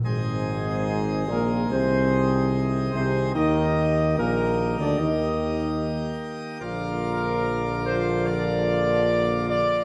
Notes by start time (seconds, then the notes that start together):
0.03 G#1 G#2 D#3 G#3 C4 G#4 D#5
1.27 A#1 A#2 A#3
1.31 A#4
1.70 C2 C3 C4 C5
2.93 C2 C3 C4 C5
3.34 D#2 D#3 A#3 D#4 G4 D#5
4.17 A#1 A#2 A#3 A#4
4.79 D2 D3 D4 D5
4.99 D#2 D#3 D#4 D#5
6.61 A#1 D3 F3 A#3 F4 A#4 D5
7.85 C5
8.26 D5
9.49 D5